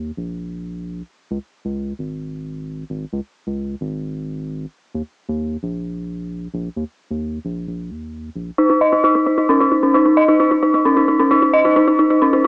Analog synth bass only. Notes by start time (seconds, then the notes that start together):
Already playing: D#2
0.17 A#1
1.31 C#2
1.65 C#2
1.99 G#1
2.90 G#1
3.13 C#2
3.47 C#2
3.81 G#1
4.95 D#2
5.29 D#2
5.63 A#1
6.54 A#1
6.76 D#2
7.10 D#2
7.45 A#1
7.67 A#1
7.90 D#2
8.36 A#1